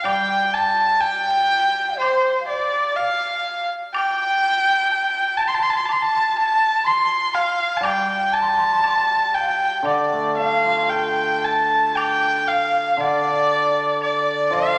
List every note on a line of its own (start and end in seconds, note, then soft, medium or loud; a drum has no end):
0.02 2.96 G3 medium
0.02 0.49 G5 medium
0.02 0.55 G5 medium
0.02 high woodblock medium
0.54 1.03 A5 medium
0.54 0.64 A5 medium
0.62 0.70 G5 medium
0.68 1.05 A5 medium
1.01 1.98 G5 loud
1.01 1.99 G5 medium
1.01 low woodblock soft
1.98 2.40 C5 medium
1.98 2.44 C5 medium
2.02 high woodblock soft
2.40 2.48 F5 soft
2.46 2.97 D5 medium
2.95 3.69 F5 medium
3.93 5.38 G5 loud
3.93 5.35 G5 medium
3.93 high woodblock medium
4.91 low woodblock soft
5.37 5.49 A5 medium
5.47 5.56 C6 medium
5.54 5.64 A5 medium
5.63 5.71 C6 medium
5.70 5.78 A5 medium
5.77 5.87 C6 medium
5.85 5.93 A5 medium
5.85 high woodblock soft
5.92 6.04 C6 medium
6.02 6.34 A5 medium
6.02 6.37 A5 medium
6.37 6.86 A5 medium
6.37 6.88 A5 loud
6.84 7.36 C6 medium
7.34 7.84 F5 medium
7.34 7.78 F5 medium
7.77 10.90 G3 medium
7.77 7.86 A5 medium
7.83 8.31 G5 medium
7.83 8.35 G5 medium
7.83 high woodblock medium
8.32 8.43 A5 medium
8.32 9.35 A5 medium
8.41 8.50 C6 medium
8.49 8.59 A5 medium
8.58 8.67 C6 medium
8.65 8.74 A5 medium
8.72 8.83 C6 medium
8.81 8.90 A5 medium
8.81 high woodblock soft
8.81 low woodblock soft
8.89 8.97 C6 medium
8.96 9.36 A5 medium
9.34 9.85 G5 medium
9.34 9.42 G5 medium
9.41 9.49 F5 medium
9.47 9.88 G5 medium
9.83 12.96 D3 medium
9.83 10.36 D5 medium
9.83 high woodblock soft
9.87 10.35 D5 medium
10.12 12.24 A3 soft
10.36 12.50 D4 soft
10.36 10.85 F5 medium
10.36 10.91 F5 medium
10.65 12.76 F4 soft
10.83 10.92 A5 medium
10.90 13.01 A4 soft
10.90 11.46 G5 medium
10.90 11.47 G5 medium
10.90 low woodblock soft
11.44 11.97 A5 medium
11.44 12.00 A5 medium
11.95 12.49 G5 medium
11.95 12.51 G5 medium
11.95 high woodblock medium
12.48 13.02 F5 medium
12.48 13.01 F5 medium
12.97 14.78 D3 medium
12.97 14.02 D5 medium
13.03 13.76 D5 medium
14.02 14.54 D5 medium
14.02 14.55 D5 medium
14.02 high woodblock soft
14.51 14.78 F3 medium
14.51 14.78 F5 medium
14.51 14.78 F5 loud